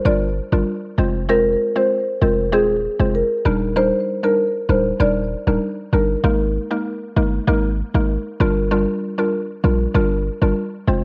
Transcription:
0.05 0.40 G1 loud
0.05 0.27 G3 loud
0.05 0.27 D4 medium
0.05 0.27 F4 medium
0.05 0.27 A#4 loud
0.05 0.50 D5 loud
0.52 0.63 G1 loud
0.52 0.73 G3 medium
0.52 0.73 D4 medium
0.52 0.73 F4 medium
0.52 0.74 A#4 medium
0.98 1.56 F1 loud
0.98 1.20 G#3 medium
0.98 1.20 C4 medium
0.98 1.20 F4 medium
0.98 1.20 C5 medium
1.29 1.72 G#3 medium
1.29 1.72 C4 medium
1.29 1.72 F4 medium
1.29 1.43 A#4 loud
1.29 1.72 C5 loud
1.76 1.97 G#3 medium
1.76 1.97 C4 medium
1.76 1.97 F4 medium
1.76 1.97 C5 medium
1.76 1.89 C5 medium
2.21 2.54 F1 loud
2.21 2.43 G#3 medium
2.21 2.43 C4 medium
2.21 2.44 F4 medium
2.21 2.36 A#4 medium
2.21 2.44 C5 medium
2.52 2.87 D#1 medium
2.52 2.74 G#3 loud
2.52 2.74 C4 medium
2.52 2.74 F4 medium
2.52 2.97 G#4 loud
2.52 2.75 C5 loud
2.99 3.23 F1 loud
2.99 3.21 G#3 medium
2.99 3.21 C4 medium
2.99 3.21 F4 medium
2.99 3.21 C5 medium
3.15 3.59 A#4 medium
3.45 3.91 D#1 loud
3.45 3.74 G3 loud
3.45 3.74 D4 medium
3.45 3.74 D#4 medium
3.45 3.74 A#4 loud
3.76 4.19 G3 medium
3.76 4.19 D4 medium
3.76 4.20 D#4 medium
3.76 4.20 A#4 loud
3.76 3.90 C5 loud
4.23 4.44 G3 medium
4.23 4.44 D4 medium
4.23 4.45 D#4 medium
4.23 4.45 A#4 medium
4.23 4.36 A#4 medium
4.69 4.92 D1 medium
4.69 4.91 G3 medium
4.69 4.91 D4 medium
4.69 4.91 D#4 medium
4.69 4.91 A#4 medium
4.69 4.83 C5 medium
5.00 5.35 D#1 loud
5.00 5.22 G3 loud
5.00 5.22 D4 medium
5.00 5.22 D#4 medium
5.00 5.22 A#4 loud
5.00 5.45 D5 medium
5.47 5.58 D1 medium
5.47 5.68 G3 medium
5.47 5.68 D4 medium
5.47 5.68 D#4 medium
5.47 5.68 A#4 medium
5.93 6.16 G1 loud
5.93 6.15 G3 medium
5.93 6.15 D4 medium
5.93 6.15 D#4 medium
5.93 6.15 A#4 medium
5.93 6.07 A#4 medium
6.24 6.58 G#1 loud
6.24 6.67 G#3 medium
6.24 6.67 A#3 medium
6.24 6.67 D#4 medium
6.24 6.67 A#4 loud
6.71 6.92 G#3 medium
6.71 6.92 A#3 medium
6.71 6.92 D#4 medium
6.71 6.92 A#4 medium
7.16 7.39 G1 medium
7.16 7.38 G#3 medium
7.16 7.38 A#3 medium
7.16 7.38 D#4 medium
7.16 7.39 A#4 medium
7.47 7.82 G#1 loud
7.47 7.69 G#3 loud
7.47 7.69 A#3 medium
7.47 7.69 D#4 medium
7.47 7.70 A#4 loud
7.94 8.17 G#1 loud
7.94 8.15 G#3 medium
7.94 8.16 A#3 medium
7.94 8.16 D#4 medium
7.94 8.16 A#4 medium
8.40 8.86 G1 loud
8.40 8.69 G3 loud
8.40 8.69 D4 medium
8.40 8.69 F4 medium
8.40 8.69 A#4 loud
8.71 9.14 G3 loud
8.71 9.14 D4 medium
8.71 9.15 F4 medium
8.71 9.15 A#4 loud
9.18 9.39 G3 medium
9.18 9.39 D4 medium
9.18 9.39 F4 medium
9.18 9.39 A#4 medium
9.64 9.87 A#1 medium
9.64 9.86 G3 medium
9.64 9.86 D4 medium
9.64 9.86 F4 medium
9.64 9.86 A#4 medium
9.94 10.30 G1 loud
9.94 10.17 G3 loud
9.94 10.17 D4 medium
9.94 10.17 F4 medium
9.94 10.17 A#4 loud
10.42 10.53 G1 medium
10.42 10.63 G3 medium
10.42 10.63 D4 medium
10.42 10.63 F4 medium
10.42 10.63 A#4 medium
10.87 11.04 F1 loud
10.87 11.04 G#3 medium
10.87 11.04 C4 medium
10.87 11.04 F4 medium
10.87 11.04 C5 medium

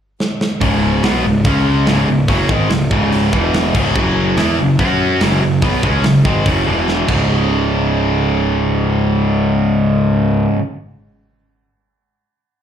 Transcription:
0.20 snare medium
0.41 snare medium
0.61 1.00 C#1 medium
0.61 1.03 C#2 loud
0.61 1.03 G#2 loud
0.61 1.03 C#3 loud
0.61 kick loud
0.61 open hi-hat medium
1.03 1.23 B1 medium
1.03 1.24 B2 medium
1.03 1.24 F#3 loud
1.03 1.24 B3 medium
1.03 snare loud
1.03 open hi-hat medium
1.24 1.44 C#1 medium
1.24 1.41 C#2 medium
1.24 1.41 G#2 medium
1.45 1.84 C#2 loud
1.45 1.87 C#3 medium
1.45 1.87 G#3 loud
1.45 1.87 C#4 loud
1.45 kick loud
1.45 open hi-hat medium
1.87 2.07 C#1 loud
1.87 2.07 C#2 loud
1.87 2.07 G#2 loud
1.87 2.08 C#3 loud
1.87 snare loud
1.87 open hi-hat medium
2.08 2.27 C#1 medium
2.08 2.25 C#2 medium
2.08 2.25 G#2 medium
2.28 2.48 F#1 loud
2.28 2.49 F#2 loud
2.28 2.49 C#3 loud
2.28 2.49 F#3 loud
2.28 kick loud
2.28 open hi-hat medium
2.49 2.69 G#1 medium
2.49 2.69 G#2 medium
2.49 2.70 D#3 medium
2.49 2.70 G#3 medium
2.49 kick loud
2.70 2.90 C#1 medium
2.70 2.87 C#2 medium
2.70 2.87 G#2 medium
2.70 snare loud
2.70 open hi-hat medium
2.91 3.30 C#1 medium
2.91 3.32 C#2 medium
2.91 3.32 G#2 medium
2.91 3.33 C#3 medium
2.91 kick loud
3.12 open hi-hat medium
3.33 3.72 E1 medium
3.33 3.74 E2 loud
3.33 3.74 B2 loud
3.33 3.74 E3 loud
3.33 kick loud
3.54 snare loud
3.54 open hi-hat medium
3.74 3.94 C#1 loud
3.74 3.95 C#2 medium
3.74 3.95 G#2 medium
3.74 3.95 C#3 loud
3.74 kick loud
3.74 crash loud
3.96 4.35 F#1 medium
3.96 4.37 F#2 loud
3.96 4.36 C#3 loud
3.96 4.37 F#3 loud
3.96 kick loud
4.37 4.57 E2 loud
4.37 4.57 E3 medium
4.37 4.58 B3 loud
4.37 4.58 E4 loud
4.37 snare loud
4.37 open hi-hat medium
4.59 4.78 F#1 medium
4.59 4.76 F#2 medium
4.59 4.76 C#3 medium
4.79 5.18 F#2 loud
4.79 5.20 F#3 loud
4.79 5.21 C#4 loud
4.79 5.21 F#4 loud
4.79 kick loud
4.79 open hi-hat medium
5.20 5.41 F#1 loud
5.20 5.41 F#2 medium
5.20 5.41 C#3 medium
5.20 5.42 F#3 loud
5.20 snare loud
5.20 open hi-hat medium
5.42 5.61 F#1 medium
5.42 5.59 F#2 medium
5.42 5.59 C#3 medium
5.62 5.82 B1 medium
5.62 5.82 B2 medium
5.62 5.83 F#3 loud
5.62 5.83 B3 loud
5.62 kick loud
5.62 open hi-hat medium
5.83 6.03 C#2 loud
5.83 6.04 C#3 medium
5.83 6.04 G#3 loud
5.83 6.04 C#4 loud
5.83 kick loud
6.04 6.24 F#1 medium
6.04 6.21 F#2 medium
6.04 6.22 C#3 medium
6.04 snare loud
6.04 open hi-hat medium
6.25 6.45 G#1 medium
6.25 6.45 G#2 medium
6.25 6.46 D#3 medium
6.25 6.46 G#3 loud
6.25 kick loud
6.46 6.65 F#1 loud
6.46 6.66 F#2 loud
6.46 6.66 C#3 loud
6.46 6.67 F#3 loud
6.46 kick loud
6.46 open hi-hat medium
6.66 7.06 E1 loud
6.66 7.07 E2 loud
6.66 7.08 B2 loud
6.66 7.08 E3 loud
6.88 snare medium
7.07 10.45 C#1 loud
7.07 10.57 C#2 medium
7.07 10.59 G#2 medium
7.07 10.61 C#3 loud
7.07 kick medium
7.07 crash medium

